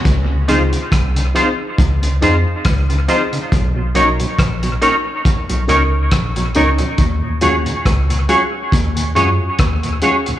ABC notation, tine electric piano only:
X:1
M:4/4
L:1/16
Q:"Swing 16ths" 1/4=69
K:Db
V:1 name="Tine electric piano" clef=bass
D,,2 D,, z C,,2 z2 D,,2 F,, z D,,2 z2 | _C,,2 C,, z B,,,2 z3 C,, D,,2 B,,,2 D,, z | E,,2 E,, z D,,2 z2 E,,2 G,, z E,,2 z2 |]